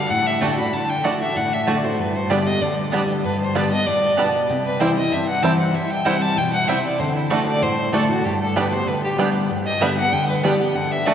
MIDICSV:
0, 0, Header, 1, 5, 480
1, 0, Start_track
1, 0, Key_signature, 1, "major"
1, 0, Tempo, 313316
1, 1118, Time_signature, 4, 2, 24, 8
1, 17070, End_track
2, 0, Start_track
2, 0, Title_t, "Fiddle"
2, 0, Program_c, 0, 110
2, 0, Note_on_c, 0, 77, 106
2, 152, Note_on_c, 0, 78, 125
2, 174, Note_off_c, 0, 77, 0
2, 408, Note_on_c, 0, 76, 106
2, 431, Note_off_c, 0, 78, 0
2, 632, Note_on_c, 0, 79, 89
2, 655, Note_off_c, 0, 76, 0
2, 883, Note_off_c, 0, 79, 0
2, 892, Note_on_c, 0, 83, 93
2, 1120, Note_on_c, 0, 81, 92
2, 1143, Note_off_c, 0, 83, 0
2, 1371, Note_on_c, 0, 79, 105
2, 1394, Note_off_c, 0, 81, 0
2, 1600, Note_on_c, 0, 78, 89
2, 1623, Note_off_c, 0, 79, 0
2, 1843, Note_off_c, 0, 78, 0
2, 1852, Note_on_c, 0, 76, 100
2, 2094, Note_on_c, 0, 78, 111
2, 2117, Note_off_c, 0, 76, 0
2, 2344, Note_on_c, 0, 76, 98
2, 2367, Note_off_c, 0, 78, 0
2, 2566, Note_on_c, 0, 74, 83
2, 2589, Note_off_c, 0, 76, 0
2, 2810, Note_on_c, 0, 72, 75
2, 2833, Note_off_c, 0, 74, 0
2, 3053, Note_on_c, 0, 71, 83
2, 3076, Note_off_c, 0, 72, 0
2, 3305, Note_on_c, 0, 72, 86
2, 3328, Note_off_c, 0, 71, 0
2, 3531, Note_on_c, 0, 74, 91
2, 3554, Note_off_c, 0, 72, 0
2, 3777, Note_on_c, 0, 75, 123
2, 3800, Note_off_c, 0, 74, 0
2, 4001, Note_on_c, 0, 74, 97
2, 4024, Note_off_c, 0, 75, 0
2, 4481, Note_off_c, 0, 74, 0
2, 4956, Note_on_c, 0, 71, 87
2, 5195, Note_off_c, 0, 71, 0
2, 5223, Note_on_c, 0, 72, 90
2, 5450, Note_on_c, 0, 74, 84
2, 5473, Note_off_c, 0, 72, 0
2, 5694, Note_off_c, 0, 74, 0
2, 5703, Note_on_c, 0, 75, 114
2, 5915, Note_on_c, 0, 74, 109
2, 5938, Note_off_c, 0, 75, 0
2, 6765, Note_off_c, 0, 74, 0
2, 7133, Note_on_c, 0, 71, 95
2, 7356, Note_on_c, 0, 72, 84
2, 7379, Note_off_c, 0, 71, 0
2, 7605, Note_off_c, 0, 72, 0
2, 7614, Note_on_c, 0, 75, 93
2, 7841, Note_on_c, 0, 76, 88
2, 7864, Note_off_c, 0, 75, 0
2, 8090, Note_off_c, 0, 76, 0
2, 8100, Note_on_c, 0, 78, 106
2, 8315, Note_on_c, 0, 81, 104
2, 8338, Note_off_c, 0, 78, 0
2, 8559, Note_off_c, 0, 81, 0
2, 8568, Note_on_c, 0, 78, 85
2, 8794, Note_on_c, 0, 76, 91
2, 8817, Note_off_c, 0, 78, 0
2, 9042, Note_on_c, 0, 79, 112
2, 9065, Note_off_c, 0, 76, 0
2, 9275, Note_on_c, 0, 78, 106
2, 9298, Note_off_c, 0, 79, 0
2, 9523, Note_on_c, 0, 81, 127
2, 9546, Note_off_c, 0, 78, 0
2, 9766, Note_on_c, 0, 79, 106
2, 9789, Note_off_c, 0, 81, 0
2, 9994, Note_off_c, 0, 79, 0
2, 10003, Note_on_c, 0, 78, 109
2, 10233, Note_on_c, 0, 76, 91
2, 10256, Note_off_c, 0, 78, 0
2, 10483, Note_off_c, 0, 76, 0
2, 10492, Note_on_c, 0, 74, 88
2, 10717, Note_on_c, 0, 72, 86
2, 10740, Note_off_c, 0, 74, 0
2, 10956, Note_off_c, 0, 72, 0
2, 10965, Note_on_c, 0, 64, 53
2, 11197, Note_on_c, 0, 69, 90
2, 11220, Note_off_c, 0, 64, 0
2, 11445, Note_off_c, 0, 69, 0
2, 11454, Note_on_c, 0, 74, 118
2, 11680, Note_on_c, 0, 72, 99
2, 11703, Note_off_c, 0, 74, 0
2, 12156, Note_on_c, 0, 69, 77
2, 12179, Note_off_c, 0, 72, 0
2, 12409, Note_off_c, 0, 69, 0
2, 12418, Note_on_c, 0, 66, 84
2, 12630, Note_on_c, 0, 67, 74
2, 12653, Note_off_c, 0, 66, 0
2, 12886, Note_off_c, 0, 67, 0
2, 12895, Note_on_c, 0, 69, 95
2, 13121, Note_on_c, 0, 71, 85
2, 13144, Note_off_c, 0, 69, 0
2, 13371, Note_on_c, 0, 72, 107
2, 13394, Note_off_c, 0, 71, 0
2, 13597, Note_on_c, 0, 71, 94
2, 13620, Note_off_c, 0, 72, 0
2, 13844, Note_off_c, 0, 71, 0
2, 13853, Note_on_c, 0, 67, 103
2, 13987, Note_off_c, 0, 67, 0
2, 14797, Note_on_c, 0, 75, 102
2, 15037, Note_on_c, 0, 76, 93
2, 15060, Note_off_c, 0, 75, 0
2, 15275, Note_off_c, 0, 76, 0
2, 15284, Note_on_c, 0, 78, 127
2, 15508, Note_on_c, 0, 79, 120
2, 15531, Note_off_c, 0, 78, 0
2, 15752, Note_off_c, 0, 79, 0
2, 15761, Note_on_c, 0, 71, 81
2, 15992, Note_on_c, 0, 74, 80
2, 16015, Note_off_c, 0, 71, 0
2, 16248, Note_on_c, 0, 79, 86
2, 16271, Note_off_c, 0, 74, 0
2, 16471, Note_on_c, 0, 78, 98
2, 16494, Note_off_c, 0, 79, 0
2, 16723, Note_on_c, 0, 76, 110
2, 16746, Note_off_c, 0, 78, 0
2, 16945, Note_on_c, 0, 74, 101
2, 16968, Note_off_c, 0, 76, 0
2, 17070, Note_off_c, 0, 74, 0
2, 17070, End_track
3, 0, Start_track
3, 0, Title_t, "Mandolin"
3, 0, Program_c, 1, 25
3, 624, Note_on_c, 1, 57, 96
3, 634, Note_on_c, 1, 66, 91
3, 639, Note_on_c, 1, 74, 93
3, 644, Note_on_c, 1, 81, 88
3, 777, Note_off_c, 1, 57, 0
3, 782, Note_off_c, 1, 66, 0
3, 784, Note_off_c, 1, 74, 0
3, 787, Note_off_c, 1, 81, 0
3, 1587, Note_on_c, 1, 57, 86
3, 1595, Note_on_c, 1, 66, 85
3, 1601, Note_on_c, 1, 74, 94
3, 1607, Note_on_c, 1, 81, 100
3, 1739, Note_off_c, 1, 57, 0
3, 1743, Note_off_c, 1, 66, 0
3, 1746, Note_off_c, 1, 74, 0
3, 1749, Note_off_c, 1, 81, 0
3, 2552, Note_on_c, 1, 57, 93
3, 2560, Note_on_c, 1, 66, 89
3, 2564, Note_on_c, 1, 74, 98
3, 2568, Note_on_c, 1, 81, 102
3, 2702, Note_off_c, 1, 57, 0
3, 2706, Note_off_c, 1, 66, 0
3, 2708, Note_off_c, 1, 74, 0
3, 2710, Note_off_c, 1, 81, 0
3, 3514, Note_on_c, 1, 59, 81
3, 3522, Note_on_c, 1, 67, 90
3, 3525, Note_on_c, 1, 74, 86
3, 3532, Note_on_c, 1, 81, 106
3, 3663, Note_off_c, 1, 59, 0
3, 3667, Note_off_c, 1, 67, 0
3, 3669, Note_off_c, 1, 74, 0
3, 3672, Note_off_c, 1, 81, 0
3, 4470, Note_on_c, 1, 59, 90
3, 4478, Note_on_c, 1, 67, 95
3, 4485, Note_on_c, 1, 74, 95
3, 4490, Note_on_c, 1, 81, 107
3, 4621, Note_off_c, 1, 59, 0
3, 4625, Note_off_c, 1, 67, 0
3, 4629, Note_off_c, 1, 74, 0
3, 4631, Note_off_c, 1, 81, 0
3, 5436, Note_on_c, 1, 59, 87
3, 5446, Note_on_c, 1, 67, 94
3, 5450, Note_on_c, 1, 74, 86
3, 5453, Note_on_c, 1, 81, 102
3, 5584, Note_off_c, 1, 59, 0
3, 5589, Note_off_c, 1, 67, 0
3, 5591, Note_off_c, 1, 74, 0
3, 5593, Note_off_c, 1, 81, 0
3, 6387, Note_on_c, 1, 59, 97
3, 6394, Note_on_c, 1, 67, 81
3, 6401, Note_on_c, 1, 74, 101
3, 6404, Note_on_c, 1, 81, 96
3, 6539, Note_off_c, 1, 59, 0
3, 6543, Note_off_c, 1, 67, 0
3, 6546, Note_off_c, 1, 74, 0
3, 6548, Note_off_c, 1, 81, 0
3, 7350, Note_on_c, 1, 60, 97
3, 7354, Note_on_c, 1, 64, 95
3, 7359, Note_on_c, 1, 72, 86
3, 7364, Note_on_c, 1, 79, 110
3, 7501, Note_off_c, 1, 60, 0
3, 7503, Note_off_c, 1, 64, 0
3, 7505, Note_off_c, 1, 72, 0
3, 7508, Note_off_c, 1, 79, 0
3, 8308, Note_on_c, 1, 60, 82
3, 8316, Note_on_c, 1, 64, 79
3, 8322, Note_on_c, 1, 72, 86
3, 8325, Note_on_c, 1, 79, 103
3, 8459, Note_off_c, 1, 60, 0
3, 8463, Note_off_c, 1, 64, 0
3, 8466, Note_off_c, 1, 72, 0
3, 8467, Note_off_c, 1, 79, 0
3, 9268, Note_on_c, 1, 60, 98
3, 9274, Note_on_c, 1, 64, 99
3, 9281, Note_on_c, 1, 72, 103
3, 9284, Note_on_c, 1, 79, 102
3, 9418, Note_off_c, 1, 60, 0
3, 9421, Note_off_c, 1, 64, 0
3, 9425, Note_off_c, 1, 72, 0
3, 9426, Note_off_c, 1, 79, 0
3, 10225, Note_on_c, 1, 60, 81
3, 10235, Note_on_c, 1, 64, 105
3, 10237, Note_on_c, 1, 72, 105
3, 10245, Note_on_c, 1, 79, 96
3, 10377, Note_off_c, 1, 60, 0
3, 10382, Note_off_c, 1, 64, 0
3, 10382, Note_off_c, 1, 72, 0
3, 10386, Note_off_c, 1, 79, 0
3, 11182, Note_on_c, 1, 57, 90
3, 11188, Note_on_c, 1, 66, 93
3, 11195, Note_on_c, 1, 74, 97
3, 11201, Note_on_c, 1, 81, 97
3, 11334, Note_off_c, 1, 57, 0
3, 11337, Note_off_c, 1, 66, 0
3, 11341, Note_off_c, 1, 74, 0
3, 11344, Note_off_c, 1, 81, 0
3, 12144, Note_on_c, 1, 57, 92
3, 12149, Note_on_c, 1, 66, 87
3, 12153, Note_on_c, 1, 74, 98
3, 12161, Note_on_c, 1, 81, 113
3, 12295, Note_off_c, 1, 57, 0
3, 12297, Note_off_c, 1, 66, 0
3, 12299, Note_off_c, 1, 74, 0
3, 12303, Note_off_c, 1, 81, 0
3, 13110, Note_on_c, 1, 59, 91
3, 13115, Note_on_c, 1, 67, 94
3, 13122, Note_on_c, 1, 74, 105
3, 13128, Note_on_c, 1, 79, 103
3, 13258, Note_off_c, 1, 59, 0
3, 13260, Note_off_c, 1, 67, 0
3, 13264, Note_off_c, 1, 74, 0
3, 13267, Note_off_c, 1, 79, 0
3, 14068, Note_on_c, 1, 59, 90
3, 14075, Note_on_c, 1, 67, 93
3, 14078, Note_on_c, 1, 74, 91
3, 14085, Note_on_c, 1, 79, 111
3, 14216, Note_off_c, 1, 59, 0
3, 14220, Note_off_c, 1, 67, 0
3, 14221, Note_off_c, 1, 74, 0
3, 14225, Note_off_c, 1, 79, 0
3, 15023, Note_on_c, 1, 59, 86
3, 15030, Note_on_c, 1, 67, 93
3, 15036, Note_on_c, 1, 74, 96
3, 15042, Note_on_c, 1, 79, 100
3, 15174, Note_off_c, 1, 59, 0
3, 15177, Note_off_c, 1, 67, 0
3, 15180, Note_off_c, 1, 74, 0
3, 15183, Note_off_c, 1, 79, 0
3, 15982, Note_on_c, 1, 59, 88
3, 15991, Note_on_c, 1, 67, 87
3, 15999, Note_on_c, 1, 74, 88
3, 16001, Note_on_c, 1, 79, 103
3, 16133, Note_off_c, 1, 59, 0
3, 16138, Note_off_c, 1, 67, 0
3, 16142, Note_off_c, 1, 74, 0
3, 16142, Note_off_c, 1, 79, 0
3, 16949, Note_on_c, 1, 57, 90
3, 16955, Note_on_c, 1, 66, 94
3, 16962, Note_on_c, 1, 74, 93
3, 16967, Note_on_c, 1, 81, 103
3, 17070, Note_off_c, 1, 57, 0
3, 17070, Note_off_c, 1, 66, 0
3, 17070, Note_off_c, 1, 74, 0
3, 17070, Note_off_c, 1, 81, 0
3, 17070, End_track
4, 0, Start_track
4, 0, Title_t, "Five-string banjo"
4, 0, Program_c, 2, 105
4, 647, Note_on_c, 2, 57, 62
4, 654, Note_on_c, 2, 62, 59
4, 685, Note_off_c, 2, 62, 0
4, 755, Note_off_c, 2, 57, 0
4, 1612, Note_on_c, 2, 57, 66
4, 1622, Note_on_c, 2, 62, 66
4, 1653, Note_off_c, 2, 62, 0
4, 1718, Note_off_c, 2, 57, 0
4, 2567, Note_on_c, 2, 57, 66
4, 2575, Note_on_c, 2, 62, 57
4, 2606, Note_off_c, 2, 62, 0
4, 2676, Note_off_c, 2, 57, 0
4, 3533, Note_on_c, 2, 55, 68
4, 3546, Note_on_c, 2, 62, 68
4, 3547, Note_on_c, 2, 59, 67
4, 3640, Note_off_c, 2, 55, 0
4, 3643, Note_off_c, 2, 59, 0
4, 3645, Note_off_c, 2, 62, 0
4, 4495, Note_on_c, 2, 55, 52
4, 4502, Note_on_c, 2, 59, 58
4, 4508, Note_on_c, 2, 62, 57
4, 4600, Note_off_c, 2, 55, 0
4, 4604, Note_off_c, 2, 59, 0
4, 4605, Note_off_c, 2, 62, 0
4, 5449, Note_on_c, 2, 55, 68
4, 5458, Note_on_c, 2, 59, 66
4, 5462, Note_on_c, 2, 62, 70
4, 5557, Note_off_c, 2, 55, 0
4, 5560, Note_off_c, 2, 59, 0
4, 5563, Note_off_c, 2, 62, 0
4, 6416, Note_on_c, 2, 55, 60
4, 6421, Note_on_c, 2, 59, 65
4, 6431, Note_on_c, 2, 62, 55
4, 6520, Note_off_c, 2, 55, 0
4, 6523, Note_off_c, 2, 59, 0
4, 6525, Note_off_c, 2, 62, 0
4, 7368, Note_on_c, 2, 55, 76
4, 7375, Note_on_c, 2, 60, 70
4, 7379, Note_on_c, 2, 64, 67
4, 7476, Note_off_c, 2, 55, 0
4, 7479, Note_off_c, 2, 60, 0
4, 7481, Note_off_c, 2, 64, 0
4, 8334, Note_on_c, 2, 55, 57
4, 8341, Note_on_c, 2, 60, 61
4, 8345, Note_on_c, 2, 64, 60
4, 8439, Note_off_c, 2, 55, 0
4, 8441, Note_off_c, 2, 60, 0
4, 8444, Note_off_c, 2, 64, 0
4, 9284, Note_on_c, 2, 55, 76
4, 9292, Note_on_c, 2, 60, 73
4, 9296, Note_on_c, 2, 64, 64
4, 9393, Note_off_c, 2, 55, 0
4, 9397, Note_off_c, 2, 60, 0
4, 9398, Note_off_c, 2, 64, 0
4, 10248, Note_on_c, 2, 55, 58
4, 10253, Note_on_c, 2, 60, 59
4, 10262, Note_on_c, 2, 64, 58
4, 10354, Note_off_c, 2, 55, 0
4, 10358, Note_off_c, 2, 60, 0
4, 10359, Note_off_c, 2, 64, 0
4, 11202, Note_on_c, 2, 57, 78
4, 11214, Note_on_c, 2, 62, 67
4, 11244, Note_off_c, 2, 62, 0
4, 11312, Note_off_c, 2, 57, 0
4, 12164, Note_on_c, 2, 57, 66
4, 12167, Note_on_c, 2, 62, 67
4, 12198, Note_off_c, 2, 62, 0
4, 12271, Note_off_c, 2, 57, 0
4, 13122, Note_on_c, 2, 55, 65
4, 13129, Note_on_c, 2, 59, 69
4, 13131, Note_on_c, 2, 62, 69
4, 13230, Note_off_c, 2, 55, 0
4, 13232, Note_off_c, 2, 59, 0
4, 13234, Note_off_c, 2, 62, 0
4, 14080, Note_on_c, 2, 55, 65
4, 14086, Note_on_c, 2, 59, 60
4, 14091, Note_on_c, 2, 62, 62
4, 14189, Note_off_c, 2, 55, 0
4, 14190, Note_off_c, 2, 59, 0
4, 14194, Note_off_c, 2, 62, 0
4, 15043, Note_on_c, 2, 55, 70
4, 15049, Note_on_c, 2, 59, 77
4, 15052, Note_on_c, 2, 62, 72
4, 15151, Note_off_c, 2, 55, 0
4, 15151, Note_off_c, 2, 59, 0
4, 15155, Note_off_c, 2, 62, 0
4, 16003, Note_on_c, 2, 55, 55
4, 16010, Note_on_c, 2, 59, 61
4, 16011, Note_on_c, 2, 62, 59
4, 16110, Note_off_c, 2, 55, 0
4, 16112, Note_off_c, 2, 59, 0
4, 16114, Note_off_c, 2, 62, 0
4, 16961, Note_on_c, 2, 57, 70
4, 16965, Note_on_c, 2, 62, 77
4, 16996, Note_off_c, 2, 62, 0
4, 17070, Note_off_c, 2, 57, 0
4, 17070, End_track
5, 0, Start_track
5, 0, Title_t, "Steel-string acoustic guitar"
5, 0, Program_c, 3, 25
5, 0, Note_on_c, 3, 62, 48
5, 154, Note_on_c, 3, 45, 90
5, 158, Note_off_c, 3, 62, 0
5, 627, Note_on_c, 3, 50, 79
5, 635, Note_on_c, 3, 57, 89
5, 642, Note_on_c, 3, 62, 97
5, 656, Note_on_c, 3, 66, 96
5, 867, Note_off_c, 3, 66, 0
5, 877, Note_off_c, 3, 50, 0
5, 881, Note_off_c, 3, 57, 0
5, 884, Note_off_c, 3, 62, 0
5, 886, Note_on_c, 3, 66, 51
5, 914, Note_on_c, 3, 62, 53
5, 1071, Note_off_c, 3, 45, 0
5, 1106, Note_off_c, 3, 66, 0
5, 1119, Note_on_c, 3, 50, 87
5, 1121, Note_off_c, 3, 62, 0
5, 1568, Note_off_c, 3, 50, 0
5, 1586, Note_on_c, 3, 50, 82
5, 1597, Note_on_c, 3, 57, 86
5, 1607, Note_on_c, 3, 62, 88
5, 1615, Note_on_c, 3, 66, 101
5, 1832, Note_off_c, 3, 66, 0
5, 1837, Note_off_c, 3, 50, 0
5, 1842, Note_off_c, 3, 57, 0
5, 1847, Note_off_c, 3, 62, 0
5, 1850, Note_on_c, 3, 66, 53
5, 1878, Note_on_c, 3, 62, 45
5, 2069, Note_off_c, 3, 66, 0
5, 2080, Note_on_c, 3, 45, 95
5, 2083, Note_off_c, 3, 62, 0
5, 2558, Note_on_c, 3, 50, 78
5, 2569, Note_on_c, 3, 57, 81
5, 2579, Note_on_c, 3, 62, 92
5, 2587, Note_on_c, 3, 66, 83
5, 2797, Note_off_c, 3, 66, 0
5, 2803, Note_off_c, 3, 50, 0
5, 2809, Note_off_c, 3, 57, 0
5, 2814, Note_off_c, 3, 62, 0
5, 2816, Note_on_c, 3, 66, 63
5, 2847, Note_on_c, 3, 62, 53
5, 2995, Note_off_c, 3, 45, 0
5, 3032, Note_off_c, 3, 66, 0
5, 3045, Note_on_c, 3, 43, 94
5, 3048, Note_off_c, 3, 62, 0
5, 3526, Note_on_c, 3, 50, 80
5, 3536, Note_on_c, 3, 55, 86
5, 3547, Note_on_c, 3, 59, 98
5, 3553, Note_on_c, 3, 67, 99
5, 3756, Note_off_c, 3, 67, 0
5, 3767, Note_off_c, 3, 50, 0
5, 3773, Note_off_c, 3, 55, 0
5, 3775, Note_on_c, 3, 67, 59
5, 3778, Note_off_c, 3, 59, 0
5, 3798, Note_on_c, 3, 59, 42
5, 3958, Note_off_c, 3, 43, 0
5, 3992, Note_off_c, 3, 67, 0
5, 4003, Note_off_c, 3, 59, 0
5, 4006, Note_on_c, 3, 50, 89
5, 4467, Note_off_c, 3, 50, 0
5, 4485, Note_on_c, 3, 50, 83
5, 4495, Note_on_c, 3, 55, 81
5, 4507, Note_on_c, 3, 59, 92
5, 4514, Note_on_c, 3, 67, 82
5, 4940, Note_off_c, 3, 50, 0
5, 4945, Note_off_c, 3, 55, 0
5, 4951, Note_off_c, 3, 59, 0
5, 4955, Note_off_c, 3, 67, 0
5, 4966, Note_on_c, 3, 43, 90
5, 5434, Note_on_c, 3, 50, 84
5, 5443, Note_on_c, 3, 55, 89
5, 5455, Note_on_c, 3, 59, 98
5, 5463, Note_on_c, 3, 67, 84
5, 5666, Note_off_c, 3, 67, 0
5, 5682, Note_off_c, 3, 50, 0
5, 5684, Note_on_c, 3, 67, 49
5, 5686, Note_off_c, 3, 55, 0
5, 5692, Note_off_c, 3, 59, 0
5, 5710, Note_on_c, 3, 59, 44
5, 5878, Note_off_c, 3, 43, 0
5, 5906, Note_off_c, 3, 67, 0
5, 5919, Note_off_c, 3, 59, 0
5, 5931, Note_on_c, 3, 45, 93
5, 6383, Note_off_c, 3, 45, 0
5, 6411, Note_on_c, 3, 47, 80
5, 6863, Note_off_c, 3, 47, 0
5, 6888, Note_on_c, 3, 48, 96
5, 7357, Note_on_c, 3, 52, 76
5, 7366, Note_on_c, 3, 55, 93
5, 7376, Note_on_c, 3, 60, 91
5, 7380, Note_on_c, 3, 64, 94
5, 7587, Note_off_c, 3, 64, 0
5, 7602, Note_off_c, 3, 52, 0
5, 7605, Note_on_c, 3, 64, 57
5, 7607, Note_off_c, 3, 55, 0
5, 7612, Note_off_c, 3, 60, 0
5, 7632, Note_on_c, 3, 60, 48
5, 7798, Note_off_c, 3, 48, 0
5, 7826, Note_off_c, 3, 64, 0
5, 7839, Note_off_c, 3, 60, 0
5, 7840, Note_on_c, 3, 43, 90
5, 8307, Note_on_c, 3, 52, 91
5, 8322, Note_on_c, 3, 55, 93
5, 8330, Note_on_c, 3, 60, 91
5, 8335, Note_on_c, 3, 64, 98
5, 8754, Note_off_c, 3, 43, 0
5, 8770, Note_off_c, 3, 52, 0
5, 8777, Note_off_c, 3, 55, 0
5, 8782, Note_off_c, 3, 60, 0
5, 8784, Note_off_c, 3, 64, 0
5, 8800, Note_on_c, 3, 48, 90
5, 9277, Note_on_c, 3, 52, 80
5, 9288, Note_on_c, 3, 55, 85
5, 9293, Note_on_c, 3, 60, 94
5, 9303, Note_on_c, 3, 64, 102
5, 9713, Note_off_c, 3, 48, 0
5, 9735, Note_off_c, 3, 52, 0
5, 9740, Note_off_c, 3, 55, 0
5, 9743, Note_off_c, 3, 60, 0
5, 9748, Note_off_c, 3, 64, 0
5, 9758, Note_on_c, 3, 47, 88
5, 10215, Note_off_c, 3, 47, 0
5, 10234, Note_on_c, 3, 48, 95
5, 10692, Note_off_c, 3, 48, 0
5, 10716, Note_on_c, 3, 50, 98
5, 11171, Note_off_c, 3, 50, 0
5, 11190, Note_on_c, 3, 50, 80
5, 11202, Note_on_c, 3, 57, 94
5, 11209, Note_on_c, 3, 62, 94
5, 11216, Note_on_c, 3, 66, 79
5, 11650, Note_off_c, 3, 50, 0
5, 11656, Note_off_c, 3, 57, 0
5, 11659, Note_off_c, 3, 62, 0
5, 11663, Note_off_c, 3, 66, 0
5, 11674, Note_on_c, 3, 45, 89
5, 12140, Note_on_c, 3, 50, 88
5, 12153, Note_on_c, 3, 57, 95
5, 12160, Note_on_c, 3, 62, 88
5, 12167, Note_on_c, 3, 66, 100
5, 12383, Note_off_c, 3, 66, 0
5, 12391, Note_off_c, 3, 50, 0
5, 12398, Note_off_c, 3, 57, 0
5, 12401, Note_off_c, 3, 62, 0
5, 12402, Note_on_c, 3, 66, 59
5, 12432, Note_on_c, 3, 62, 45
5, 12589, Note_off_c, 3, 45, 0
5, 12622, Note_off_c, 3, 66, 0
5, 12637, Note_off_c, 3, 62, 0
5, 12638, Note_on_c, 3, 43, 88
5, 13102, Note_on_c, 3, 50, 88
5, 13110, Note_on_c, 3, 55, 81
5, 13119, Note_on_c, 3, 59, 81
5, 13130, Note_on_c, 3, 67, 92
5, 13338, Note_off_c, 3, 67, 0
5, 13352, Note_off_c, 3, 50, 0
5, 13356, Note_off_c, 3, 55, 0
5, 13357, Note_on_c, 3, 67, 66
5, 13361, Note_off_c, 3, 59, 0
5, 13387, Note_on_c, 3, 59, 50
5, 13550, Note_off_c, 3, 43, 0
5, 13579, Note_off_c, 3, 67, 0
5, 13589, Note_on_c, 3, 50, 93
5, 13594, Note_off_c, 3, 59, 0
5, 14043, Note_off_c, 3, 50, 0
5, 14061, Note_on_c, 3, 50, 80
5, 14073, Note_on_c, 3, 55, 83
5, 14082, Note_on_c, 3, 59, 85
5, 14089, Note_on_c, 3, 67, 109
5, 14525, Note_off_c, 3, 50, 0
5, 14531, Note_off_c, 3, 55, 0
5, 14535, Note_off_c, 3, 59, 0
5, 14539, Note_off_c, 3, 67, 0
5, 14551, Note_on_c, 3, 43, 80
5, 15023, Note_on_c, 3, 50, 85
5, 15033, Note_on_c, 3, 55, 76
5, 15040, Note_on_c, 3, 59, 89
5, 15050, Note_on_c, 3, 67, 97
5, 15252, Note_off_c, 3, 67, 0
5, 15270, Note_on_c, 3, 67, 64
5, 15272, Note_off_c, 3, 50, 0
5, 15277, Note_off_c, 3, 55, 0
5, 15280, Note_off_c, 3, 59, 0
5, 15302, Note_on_c, 3, 59, 46
5, 15467, Note_off_c, 3, 43, 0
5, 15496, Note_off_c, 3, 67, 0
5, 15509, Note_on_c, 3, 50, 96
5, 15511, Note_off_c, 3, 59, 0
5, 15960, Note_off_c, 3, 50, 0
5, 15978, Note_on_c, 3, 50, 88
5, 15987, Note_on_c, 3, 55, 90
5, 15997, Note_on_c, 3, 59, 83
5, 16006, Note_on_c, 3, 67, 106
5, 16214, Note_off_c, 3, 67, 0
5, 16230, Note_off_c, 3, 50, 0
5, 16232, Note_on_c, 3, 67, 58
5, 16234, Note_off_c, 3, 55, 0
5, 16239, Note_off_c, 3, 59, 0
5, 16258, Note_on_c, 3, 59, 47
5, 16457, Note_off_c, 3, 67, 0
5, 16469, Note_off_c, 3, 59, 0
5, 16470, Note_on_c, 3, 50, 94
5, 16922, Note_off_c, 3, 50, 0
5, 16940, Note_on_c, 3, 50, 98
5, 16953, Note_on_c, 3, 57, 97
5, 16961, Note_on_c, 3, 62, 100
5, 16970, Note_on_c, 3, 66, 97
5, 17070, Note_off_c, 3, 50, 0
5, 17070, Note_off_c, 3, 57, 0
5, 17070, Note_off_c, 3, 62, 0
5, 17070, Note_off_c, 3, 66, 0
5, 17070, End_track
0, 0, End_of_file